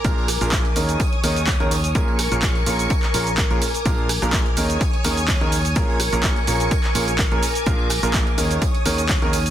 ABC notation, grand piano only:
X:1
M:4/4
L:1/16
Q:"Swing 16ths" 1/4=126
K:Bbm
V:1 name="Grand piano"
[B,,B,=DFAB]2 z [B,,B,DFAB]2 z [E,B,_DEAB]2 z2 [E,B,DEAB] z2 [E,B,DEAB] z2 | [B,,B,DFAB]2 z [B,,B,DFAB]2 z [B,,B,DFAB]2 z2 [B,,B,DFAB] z2 [B,,B,DFAB] z2 | [B,,B,=DFAB]2 z [B,,B,DFAB]2 z [E,B,_DEAB]2 z2 [E,B,DEAB] z2 [E,B,DEAB] z2 | [B,,B,DFAB]2 z [B,,B,DFAB]2 z [B,,B,DFAB]2 z2 [B,,B,DFAB] z2 [B,,B,DFAB] z2 |
[B,,B,=DFAB]2 z [B,,B,DFAB]2 z [E,B,_DEAB]2 z2 [E,B,DEAB] z2 [E,B,DEAB] z2 |]